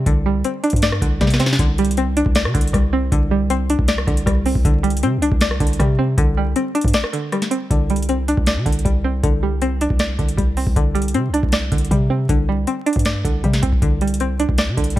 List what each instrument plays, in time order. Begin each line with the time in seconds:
Already playing: synth pluck G3 C4 D5
0.06 808-style bass C2, synth pluck D3, kick, closed hi-hat
0.26 synth pluck G3
0.44 synth pluck C4, closed hi-hat
0.64 synth pluck D4, closed hi-hat
0.70 808-style bass G2, kick, closed hi-hat
0.76 closed hi-hat
0.82 synth pluck D5, snare, closed hi-hat
0.92 cross-stick
1.02 808-style bass C2, synth pluck D3, kick, closed hi-hat
1.21 808-style bass C3, synth pluck G3, kick, snare, closed hi-hat
1.27 snare, closed hi-hat
1.34 snare
1.40 synth pluck C4, snare, closed hi-hat
1.46 snare
1.53 snare
1.59 808-style bass C2, synth pluck D3, kick, closed hi-hat
1.78 synth pluck G3, closed hi-hat
1.85 closed hi-hat
1.91 closed hi-hat
1.97 synth pluck C4, closed hi-hat
2.17 synth pluck D4, closed hi-hat
2.26 808-style bass C2, kick
2.35 synth pluck D5, snare, closed hi-hat
2.45 808-style bass C3, cross-stick
2.54 808-style bass C2, synth pluck D3, kick, closed hi-hat
2.61 closed hi-hat
2.67 closed hi-hat
2.73 808-style bass C2, synth pluck G3, kick, cross-stick, closed hi-hat
2.93 synth pluck C4
3.12 808-style bass C2, synth pluck D3, kick, closed hi-hat
3.31 synth pluck G3
3.50 synth pluck C4, closed hi-hat
3.70 synth pluck D4, closed hi-hat
3.79 808-style bass C2, kick
3.88 synth pluck D5, snare, closed hi-hat
3.98 cross-stick
4.07 808-style bass C2, synth pluck D3, kick, closed hi-hat
4.17 closed hi-hat
4.26 808-style bass C2, synth pluck G3, kick, cross-stick, closed hi-hat
4.46 synth pluck C4, open hi-hat
4.55 808-style bass C2, kick
4.65 808-style bass C2, synth pluck D3, kick, closed hi-hat
4.83 synth pluck G3, closed hi-hat
4.90 closed hi-hat
4.97 closed hi-hat
5.03 808-style bass C3, synth pluck C4, closed hi-hat
5.17 808-style bass C2
5.22 synth pluck D4, closed hi-hat
5.32 808-style bass C2, kick
5.41 synth pluck D5, snare, closed hi-hat
5.51 cross-stick
5.60 808-style bass C2, synth pluck D3, kick, closed hi-hat
5.67 closed hi-hat
5.73 closed hi-hat
5.79 808-style bass C3, synth pluck G3, kick, cross-stick, closed hi-hat
5.99 synth pluck C4
6.18 808-style bass C2, synth pluck D3, kick, closed hi-hat
6.37 synth pluck G3
6.56 synth pluck C4, closed hi-hat
6.75 synth pluck D4, closed hi-hat
6.81 808-style bass G2, kick, closed hi-hat
6.88 closed hi-hat
6.94 synth pluck D5, snare, closed hi-hat
7.04 cross-stick
7.13 synth pluck D3, closed hi-hat
7.32 synth pluck G3, cross-stick, closed hi-hat
7.42 snare, closed hi-hat
7.51 synth pluck C4, closed hi-hat
7.71 808-style bass C2, synth pluck D3, kick, closed hi-hat
7.90 synth pluck G3, closed hi-hat
7.96 closed hi-hat
8.02 closed hi-hat
8.09 synth pluck C4, closed hi-hat
8.28 synth pluck D4, closed hi-hat
8.37 808-style bass C2, kick
8.46 synth pluck D5, snare, closed hi-hat
8.57 808-style bass C3
8.66 808-style bass C2, synth pluck D3, kick, closed hi-hat
8.72 closed hi-hat
8.79 closed hi-hat
8.85 808-style bass C2, synth pluck G3, kick, closed hi-hat
9.04 synth pluck C4
9.23 808-style bass C2, synth pluck D3, kick, closed hi-hat
9.43 synth pluck G3
9.62 synth pluck C4, closed hi-hat
9.81 synth pluck D4, closed hi-hat
9.90 808-style bass C2, kick
9.99 synth pluck D5, snare, closed hi-hat
10.19 808-style bass C2, synth pluck D3, kick, closed hi-hat
10.29 closed hi-hat
10.37 808-style bass C2, synth pluck G3, kick, closed hi-hat
10.57 synth pluck C4, open hi-hat
10.67 808-style bass C2, kick
10.76 808-style bass C2, synth pluck D3, kick, closed hi-hat
10.95 synth pluck G3, closed hi-hat
11.02 closed hi-hat
11.08 closed hi-hat
11.14 808-style bass C3, synth pluck C4, closed hi-hat
11.29 808-style bass C2
11.34 synth pluck D4, closed hi-hat
11.43 808-style bass C2, kick
11.52 synth pluck D5, snare, closed hi-hat
11.72 808-style bass C2, synth pluck D3, kick, closed hi-hat
11.78 closed hi-hat
11.85 closed hi-hat
11.91 808-style bass C3, synth pluck G3, kick, closed hi-hat
12.10 synth pluck C4
12.29 808-style bass C2, synth pluck D3, kick, closed hi-hat
12.49 synth pluck G3
12.67 synth pluck C4, closed hi-hat
12.86 synth pluck D4, closed hi-hat
12.93 808-style bass G2, kick, closed hi-hat
12.99 closed hi-hat
13.05 synth pluck D5, snare, closed hi-hat
13.24 808-style bass C2, synth pluck D3, kick, closed hi-hat
13.44 808-style bass C3, synth pluck G3, kick, closed hi-hat
13.53 snare, closed hi-hat
13.62 808-style bass C2, synth pluck C4, kick, closed hi-hat
13.73 kick
13.82 808-style bass C2, synth pluck D3, kick, closed hi-hat
14.01 synth pluck G3, closed hi-hat
14.08 closed hi-hat
14.14 closed hi-hat
14.20 synth pluck C4, closed hi-hat
14.40 synth pluck D4, closed hi-hat
14.49 808-style bass C2, kick
14.58 synth pluck D5, snare, closed hi-hat
14.68 808-style bass C3
14.77 808-style bass C2, synth pluck D3, kick, closed hi-hat
14.84 closed hi-hat
14.90 closed hi-hat
14.96 synth pluck G3